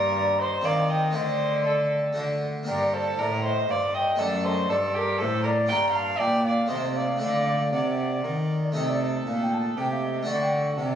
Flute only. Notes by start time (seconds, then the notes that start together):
Already playing: D5
0.39 D#5
0.64 F5
0.89 G5
1.15 D#5
1.65 D5
2.68 D5
2.94 C5
3.20 D5
3.45 D#5
3.70 F5
3.95 G5
4.20 D5
4.45 D#5
4.69 D5
4.96 A#4
5.21 C5
5.45 D5
5.71 A#5
5.96 A5
6.20 G5
6.45 F5
6.69 D#5
6.96 F5
7.22 F5
7.74 F#5
8.64 D5
8.76 D#5
8.89 D5
9.02 D#5
9.27 F5
9.42 G5
9.54 A5
9.80 G5
9.92 F5
10.04 D#5
10.28 D5
10.42 G5
10.53 F#5
10.78 D5